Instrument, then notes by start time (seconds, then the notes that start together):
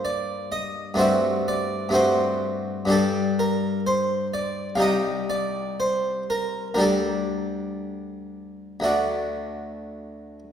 harpsichord
Already playing: G2 A#3 D4 G4
0.05 D5
0.52 D#5
0.94 G2 A3 C4
0.98 F#4 E5
1.48 D5
1.89 G2 A3 C4
1.94 F#4 C5
2.85 G2 G3 D4
2.90 G4 A4
3.39 A#4
3.87 C5
4.34 D5
4.76 C2 G3 D#4 F5
4.80 G4 D#5
5.30 D5
5.80 C5
6.30 A#4
6.74 D2 G3 D4 A#4
6.79 G4 A4
8.80 D2 A3 D4
8.84 F#4